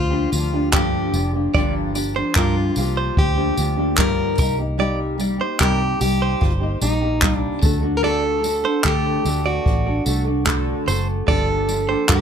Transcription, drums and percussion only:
0.33 tambourine
0.73 kick, clap
1.14 tambourine
1.55 kick
1.95 tambourine
2.35 kick, clap
2.76 tambourine
3.17 kick
3.58 tambourine
3.98 kick, clap
4.38 kick, tambourine
5.20 tambourine
5.60 kick, clap
6.01 tambourine
6.42 kick
6.82 tambourine
7.22 kick, clap
7.62 kick, tambourine
8.44 tambourine
8.84 kick, clap
9.25 tambourine
9.66 kick
10.06 tambourine
10.47 kick, clap
10.88 tambourine
11.28 kick
11.69 tambourine
12.09 kick, clap

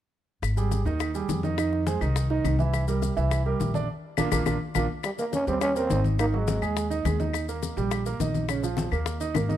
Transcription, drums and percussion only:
0.43 high bongo, high conga, claves, maracas
0.57 high bongo, high conga, maracas
0.71 high bongo, high conga, maracas
0.86 high bongo, high conga, maracas
1.00 high bongo, high conga, claves, maracas
1.15 high bongo, high conga, maracas
1.29 high bongo, low bongo, high conga, maracas
1.43 high conga, maracas
1.58 high bongo, high conga, claves, maracas
1.72 high bongo, high conga
1.87 high bongo, high conga, maracas
2.01 high bongo, high conga, claves, maracas
2.16 high bongo, high conga, maracas
2.30 high bongo, high conga
2.44 high bongo, low bongo, high conga, claves, maracas
2.59 high conga, maracas
2.73 high bongo, high conga, claves, maracas
2.88 high bongo, high conga, maracas
3.02 high bongo, high conga, maracas
3.17 high bongo, high conga, maracas
3.31 high bongo, high conga, claves, maracas
3.46 high bongo, high conga
3.60 high bongo, low bongo, high conga, maracas
3.74 high conga, maracas
4.17 high bongo, high conga, claves, maracas
4.32 high bongo, high conga, claves, maracas
4.46 high bongo, high conga, claves, maracas
4.75 high bongo, high conga, claves, maracas
5.03 high bongo, high conga, claves, maracas
5.18 high bongo, high conga, maracas
5.33 high bongo, high conga, maracas
5.47 high bongo, high conga, maracas
5.61 high bongo, high conga, claves, maracas
5.76 high bongo, high conga, maracas
5.90 high bongo, low bongo, high conga, maracas
6.04 high conga, maracas
6.19 high bongo, claves, maracas
6.33 high bongo, high conga
6.48 high bongo, high conga, maracas
6.62 high bongo, high conga, claves, maracas
6.77 high bongo, high conga, maracas
6.91 high bongo, high conga, maracas
7.05 high bongo, low bongo, high conga, claves, maracas
7.20 high conga, maracas
7.33 high bongo, high conga, claves, maracas
7.49 high bongo, high conga, maracas
7.63 high bongo, high conga, maracas
7.77 high bongo, high conga, maracas
7.91 high bongo, high conga, claves, maracas
8.06 high bongo, high conga, maracas
8.20 high bongo, low bongo, high conga, maracas
8.34 high conga, maracas
8.49 high bongo, high conga, claves, maracas
8.63 high bongo, high conga, maracas
8.77 high bongo, high conga, maracas
8.91 high bongo, high conga, claves, maracas
9.06 high bongo, high conga, maracas
9.20 high bongo, high conga, maracas
9.35 high bongo, low bongo, high conga, claves, maracas
9.50 high conga, maracas

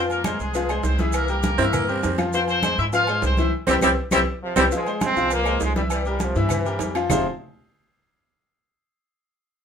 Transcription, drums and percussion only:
0.09 high conga, low agogo, maracas
0.24 cowbell, high conga, low timbale, low agogo, claves, maracas
0.40 high conga, maracas
0.54 cowbell, high conga, low agogo, maracas
0.69 high conga, low agogo, claves, maracas
0.83 cowbell, high conga, low timbale, maracas
0.99 cowbell, high conga, maracas
1.13 cowbell, low agogo, claves, maracas
1.28 high conga, maracas
1.43 cowbell, high conga, low timbale, low agogo, maracas
1.58 high conga, maracas
1.73 cowbell, high conga, low conga, low agogo, claves, maracas
1.87 high conga, maracas
2.03 cowbell, high conga, low timbale, low agogo, maracas
2.18 cowbell, high conga, low agogo, claves, maracas
2.33 cowbell, high conga, maracas
2.48 high conga, low agogo, maracas
2.63 cowbell, high conga, low timbale, low agogo, claves, maracas
2.78 high conga, maracas
2.93 cowbell, high conga, low agogo, maracas
3.07 high conga, low agogo, claves, maracas
3.22 cowbell, high conga, low timbale, maracas
3.37 cowbell, high conga, maracas
3.67 cowbell, high conga, high timbale, claves, maracas
3.81 cowbell, high conga, high timbale, claves, maracas
4.11 cowbell, high conga, high timbale, claves, maracas
4.56 cowbell, high conga, high timbale, claves, maracas
4.71 cowbell, high conga, maracas
4.86 high conga, low agogo, maracas
5.01 cowbell, high conga, low timbale, low agogo, claves, maracas
5.16 high conga, maracas
5.30 cowbell, high conga, low agogo, maracas
5.46 high conga, low agogo, claves, maracas
5.60 cowbell, high conga, low timbale, maracas
5.76 cowbell, high conga, maracas
5.90 cowbell, high conga, low agogo, claves, maracas
6.05 high conga, maracas
6.20 cowbell, high conga, low timbale, low agogo, maracas
6.35 high conga, maracas
6.49 cowbell, high conga, low conga, low agogo, claves, maracas
6.65 high conga, maracas
6.79 cowbell, high conga, low timbale, low agogo, maracas
6.95 cowbell, low agogo, claves, maracas
7.10 low bongo, low conga, low timbale, claves, maracas

